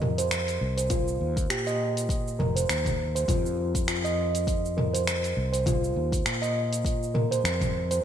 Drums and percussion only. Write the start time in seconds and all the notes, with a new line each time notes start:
0.02 mid tom
0.18 open hi-hat, cabasa
0.31 finger snap, open hi-hat, cabasa
0.48 open hi-hat, cabasa
0.78 open hi-hat, cabasa
0.90 kick, mid tom, open hi-hat, cabasa
1.08 cabasa
1.37 kick, open hi-hat, cabasa
1.50 finger snap, open hi-hat, cabasa
1.67 open hi-hat, cabasa
1.97 open hi-hat, cabasa
2.09 kick, open hi-hat, cabasa
2.28 cabasa
2.40 mid tom
2.57 open hi-hat, cabasa
2.69 finger snap, open hi-hat, cabasa
2.85 kick, mid tom, open hi-hat, cabasa
3.16 open hi-hat, cabasa
3.28 kick, mid tom, open hi-hat, cabasa
3.46 cabasa
3.75 kick, open hi-hat, cabasa
3.88 finger snap, open hi-hat, cabasa
4.05 open hi-hat, cabasa
4.35 open hi-hat, cabasa
4.47 kick, open hi-hat, cabasa
4.65 cabasa
4.78 mid tom
4.95 open hi-hat, cabasa
5.07 finger snap, open hi-hat, cabasa
5.24 open hi-hat, cabasa
5.54 open hi-hat, cabasa
5.66 kick, mid tom, open hi-hat, cabasa
5.84 cabasa
6.12 kick, open hi-hat, cabasa
6.26 finger snap, open hi-hat, cabasa
6.43 open hi-hat, cabasa
6.73 open hi-hat, cabasa
6.85 kick, open hi-hat, cabasa
7.03 cabasa
7.15 mid tom
7.32 open hi-hat, cabasa
7.45 finger snap, open hi-hat, cabasa
7.61 kick, mid tom, open hi-hat, cabasa
7.91 open hi-hat, cabasa